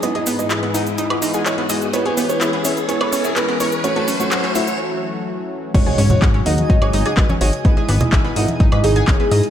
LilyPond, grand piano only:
\new Staff \with { instrumentName = "Grand piano" } { \time 4/4 \key gis \phrygian \tempo 4 = 126 <gis e' dis''>16 <gis e' dis''>16 r16 <gis e' dis''>16 <gis e' dis''>8 <gis e' fis''>16 r16 <gis e' dis''>16 <gis e' dis''>8 <gis e' fis''>16 <gis e' cis''>16 r16 <gis e' dis''>16 r16 | <b e' cis''>16 <b e' cis''>16 r16 <b e' cis''>16 <b e' cis''>8 <b e' e''>16 r16 <b e' cis''>16 <b e' cis''>8 <b e' e''>16 <b e' b'>16 r16 <b e' cis''>16 r16 | <a fis' cis''>16 <a fis' cis''>16 r16 <a fis' cis''>16 <a fis' cis''>8 <a fis' fis''>16 r2 r16 | <gis fis' cis''>16 <gis fis' cis''>16 r16 <gis fis' cis''>16 r8 <gis fis' fis''>16 r16 <gis fis' cis''>16 <gis fis' cis''>8 <gis fis' fis''>16 <gis fis' b'>16 r16 <gis fis' cis''>16 r16 |
<gis e' dis''>16 <gis e' dis''>16 r16 <gis e' dis''>16 e'8 <gis e' fis''>16 r16 <gis e' dis''>16 <gis e' dis''>8 <gis e' fis''>16 <gis e' cis''>16 r16 <gis e' dis''>16 r16 | }